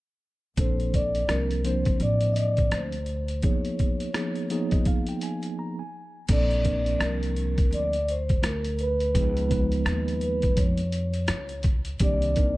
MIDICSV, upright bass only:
0, 0, Header, 1, 2, 480
1, 0, Start_track
1, 0, Tempo, 714286
1, 386, Time_signature, 4, 2, 24, 8
1, 8448, End_track
2, 0, Start_track
2, 0, Title_t, "Upright bass"
2, 0, Program_c, 0, 32
2, 385, Note_on_c, 0, 34, 84
2, 841, Note_off_c, 0, 34, 0
2, 863, Note_on_c, 0, 36, 76
2, 1321, Note_off_c, 0, 36, 0
2, 1345, Note_on_c, 0, 33, 80
2, 1802, Note_off_c, 0, 33, 0
2, 1825, Note_on_c, 0, 38, 91
2, 2282, Note_off_c, 0, 38, 0
2, 4227, Note_on_c, 0, 34, 100
2, 4683, Note_off_c, 0, 34, 0
2, 4706, Note_on_c, 0, 36, 83
2, 5162, Note_off_c, 0, 36, 0
2, 5179, Note_on_c, 0, 38, 82
2, 5638, Note_off_c, 0, 38, 0
2, 5662, Note_on_c, 0, 38, 89
2, 6120, Note_off_c, 0, 38, 0
2, 6146, Note_on_c, 0, 37, 111
2, 6602, Note_off_c, 0, 37, 0
2, 6624, Note_on_c, 0, 39, 94
2, 7081, Note_off_c, 0, 39, 0
2, 7103, Note_on_c, 0, 41, 89
2, 7561, Note_off_c, 0, 41, 0
2, 7586, Note_on_c, 0, 37, 87
2, 8042, Note_off_c, 0, 37, 0
2, 8066, Note_on_c, 0, 36, 102
2, 8448, Note_off_c, 0, 36, 0
2, 8448, End_track
0, 0, End_of_file